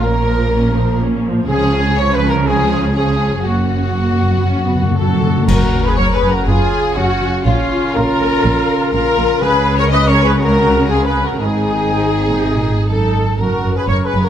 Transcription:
Already playing: A#1 A#2
0.01 A#3 C#4 A#4
0.25 F3 A#3
0.50 A#3 C#4
0.76 F3 A#3
1.00 A#3 C#4
1.25 F3 A#3
1.48 C#2 C#3 F3 C#4 G#4
1.96 F3 C#4 C#5
2.12 B4
2.29 A#4
2.46 F3 C#4 G#4
2.94 F3 C#4 G#4
3.43 F#1 F#2 A#3 C#4 F#4
3.52 F#2
3.59 F#2
3.66 F#2
3.74 F#2
3.82 F#2
3.95 F#2 A#3
4.13 F#2
4.22 F#2
4.29 F#2
4.34 B3
4.43 F#2 C#4
4.51 F#2
4.58 F#2
4.64 F#2 B3
4.75 F#2
4.81 F#2 A#3
4.91 F#2
4.97 F#2 F#3 F#4 A4 A5
5.07 F#2
5.14 F#2
5.22 F#2
5.30 F#2
5.37 F#2
5.47 F#1 F#2 C#3 C#4 F#4 A#4 A#5, concert bass drum, crash
5.83 G#4 B4 B5
5.96 F#1 F#2 A#4 C#5 C#6
6.11 G#4 B4 B5
6.16 B4
6.22 F#1 F#2
6.28 F#4 A#4 A#5
6.46 F#1 F#2 F4 G#4 G#5
6.95 F#1 F#2 C#4 F#4 F#5
7.20 F#1 F#2
7.44 A#1 A#2 C#3 C#4 F4 F5
7.94 A#1 A#2 F4 A#4 A#5
8.20 A#1 A#2
8.44 A#1 A#2
8.93 A#1 A#2 F4 A#4 A#5
9.17 A#1 A#2
9.41 C#2 C#3 C#4 G#4 B4 B5
9.77 A#4 C#5 C#6
9.90 B4 D#5 D#6
10.06 A#4 C#5 C#6
10.11 C#5
10.22 G#4 B4 B5
10.27 B4
10.37 F#4 A#4 A#5
10.42 A#4
10.87 F4 G#4 G#5
10.92 G#4
11.03 G#4 B4 B5
11.22 F#4 A#4 A#5
11.37 G#1 G#2 D#3 C4 D#4 G#4 G#5
11.90 G#2
12.27 A#2
12.39 C3
12.57 A#2
12.73 G#2
12.88 F#2 D#4 A4 A5
13.39 F#1 F#2 C#3 C#4 F#4 A#4 A#5
13.63 F#1 F#2
13.75 G#4 B4 B5
13.88 F#1 F#2 A#4 C#5 C#6
14.06 G#4 B4 B5
14.13 F#1 F#2
14.22 F#4 A#4 A#5

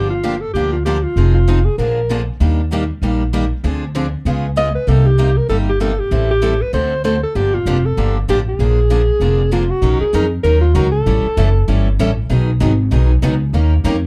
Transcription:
Already playing: G1 D3 F3 A#3 D4 G4
0.10 F4
0.24 D3 F3 A#3 D4 G4
0.41 A4
0.53 D2 D3 F3 A#3 D4 G4
0.72 F4
0.85 D3 F3 A#3 D4 G4
1.03 F4
1.16 F1 F3 C4 D#4 G#4
1.34 F4
1.48 F3 C4 D#4 G#4
1.65 G#4
1.78 A#1 D3 F3 A#3 D4 G#4 A#4
2.10 D3 F3 A#3 D4 G#4
2.40 D#2 D#3 G3 A#3 D4 G4
2.72 D#3 G3 A#3 D4 G4
3.02 A#1 D#3 G3 A#3 D4 G4
3.33 D#3 G3 A#3 D4 G4
3.64 D2 D3 F3 C4 D4 G#4
3.95 D3 F3 C4 D4 G#4
4.25 C#2 C#3 G#3 B3 F4 G#4
4.56 C#3 G#3 B3 F4 G#4 D#5
4.75 B4
4.87 C2 C3 G3 A#3 D#4 G4 A4
5.06 G4
5.18 C3 G3 A#3 D#4 G4
5.37 A#4
5.49 G1 C3 G3 A#3 D#4 G4 A4
5.69 G4
5.80 C3 G3 A#3 D#4 G4 A4
5.99 G4
6.11 A1 E3 G3 C4 E4 A4
6.31 G4
6.42 E3 G3 C4 E4 A4
6.62 B4
6.73 D2 D3 A3 C4 F#4 A4 C5
7.04 D3 A3 C4 F#4 A4 C5
7.23 A4
7.35 G1 D3 F3 A#3 D4 G4
7.54 F4
7.66 F1 D3 F3 A#3 D4 G4
7.85 A4
7.97 G1 D3 F3 A#3 D4 G4
8.28 A1 D3 F3 A#3 D4 G4
8.49 G#4
8.59 A#1 D3 F3 A#3 D4 G#4
8.90 D3 F3 A#3 D4 G#4
9.20 F1 D3 F3 A#3 D4 G#4
9.51 D3 F3 A#3 D4 F4 G#4
9.70 F#4
9.82 A#1 D#3 F#3 C#4 D#4 A#4
10.00 G#4, muted upright bass stroke
10.13 F2 D#3 F#3 C#4 D#4 A#4
10.43 D#2 D#3 F#3 C#4 D#4 A#4
10.61 F4
10.74 C#2 D#3 F#3 C#4 D#4 F#4 A#4
10.92 A4
11.06 A1 E3 G3 C#4 E4 A4
11.24 muted upright bass stroke
11.37 F#1 E3 G3 C#4 E4 A4
11.68 G1 E3 G3 C#4 E4 A4
11.99 A1 E3 G3 C#4 E4 A4
12.29 B1 B2 D#3 F#3 B3 D#4 G#4
12.60 G#1 B2 D#3 F#3 B3 D#4 G#4
12.91 B1 B2 D#3 F#3 B3 D#4 G#4
13.22 C#2 B2 D#3 F#3 B3 D#4 G#4
13.53 D#2 D#3 A#3 C#4 G4 A#4
13.84 F2 D#3 A#3 C#4 G4 A#4

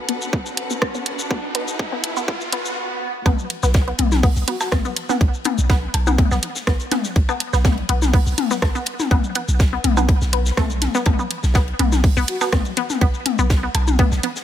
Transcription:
Already playing: D4 F#4 A4 B4 F#5, riser
0.09 B1 B3, closed hi-hat
0.22 shaker
0.33 B3, kick
0.46 B1, shaker
0.57 closed hi-hat
0.70 B3, shaker
0.82 kick, cross-stick
0.95 B3, shaker
1.06 closed hi-hat
1.19 shaker
1.31 B3, kick
1.55 B3, closed hi-hat
1.68 B1, shaker
1.79 kick
1.92 B3
2.04 B1, closed hi-hat
2.17 B3, shaker
2.28 kick, swell
2.41 B1, shaker
2.52 B3, closed hi-hat
2.65 shaker
3.26 B1 B3, kick, high tom, ride, percussion blips
3.39 shaker
3.50 closed hi-hat, ride
3.63 B1 B3, snare, shaker
3.74 kick, snare, ride
3.87 B3, ride
3.98 B1, closed hi-hat, high tom, ride
4.12 snare, mid tom, shaker
4.23 B3, kick, open hi-hat
4.36 B1, shaker
4.48 B3 F#4, closed hi-hat, ride
4.61 F#4, snare, percussion blips, shaker
4.72 B1, kick, cross-stick, snare, high tom, ride
4.85 B3, ride, shaker
4.96 closed hi-hat, ride
5.09 B3, snare, mid tom, shaker
5.21 B1, kick, ride
5.34 shaker
5.44 B3, closed hi-hat, high tom, ride
5.58 B1, shaker
5.70 B3, kick, snare, ride
5.94 B1, closed hi-hat, ride, percussion blips
6.07 B3, mid tom, shaker
6.18 kick, high tom, ride
6.31 B1 B3, snare, shaker
6.42 closed hi-hat, ride
6.55 snare, shaker
6.67 B1 B3, kick, cross-stick, snare, ride
6.80 ride, shaker
6.91 B3, snare, closed hi-hat, mid tom, high tom, ride
7.05 snare, shaker
7.16 B1, kick, ride
7.29 B3, percussion blips, shaker
7.40 closed hi-hat, ride
7.53 B1 B3, snare, shaker
7.64 kick, snare, high tom, ride
7.77 ride
7.89 B1 B3, closed hi-hat, ride
8.02 snare, mid tom, shaker
8.13 B3, kick, open hi-hat
8.26 B1, shaker
8.38 closed hi-hat, high tom, ride
8.50 B3, snare, shaker
8.62 B1, kick, cross-stick, snare, ride, percussion blips
8.75 B3, ride, shaker
8.86 closed hi-hat, ride
9.00 snare, mid tom, shaker
9.11 B1 B3, kick, high tom, ride
9.24 shaker
9.35 B3, closed hi-hat, ride
9.48 B1, shaker
9.59 kick, snare, ride
9.73 B3
9.84 B1, closed hi-hat, high tom, ride
9.97 B3, mid tom, percussion blips, shaker
10.09 kick, ride
10.21 B1, snare, shaker
10.33 B3, closed hi-hat, ride
10.46 snare, shaker
10.57 B1 A3, kick, cross-stick, snare, high tom, ride
10.70 ride, shaker
10.82 snare, closed hi-hat, mid tom, ride
10.95 B3, snare, shaker
11.06 B1, kick, high tom, ride, percussion blips
11.19 B3, shaker
11.31 closed hi-hat, ride
11.43 B1, snare, shaker
11.54 B3, kick, snare, ride
11.68 ride
11.79 B1 B3, closed hi-hat, high tom, ride
11.92 snare, mid tom, shaker
12.04 kick, open hi-hat
12.17 B1 B3, shaker
12.28 F#4, closed hi-hat, ride
12.41 B3 F#4, snare, percussion blips, shaker
12.52 B1, kick, cross-stick, snare, high tom, ride
12.65 ride, shaker
12.77 B3, closed hi-hat, ride
12.90 snare, mid tom, shaker
13.01 B1 B3, kick, ride
13.14 shaker
13.26 closed hi-hat, high tom, ride
13.39 B1 B3, shaker
13.50 kick, snare, ride
13.63 B3
13.74 B1, closed hi-hat, ride, percussion blips
13.87 mid tom, shaker
13.99 B3, kick, high tom, ride
14.11 B1, snare, shaker
14.23 B3, closed hi-hat, ride
14.36 snare, shaker

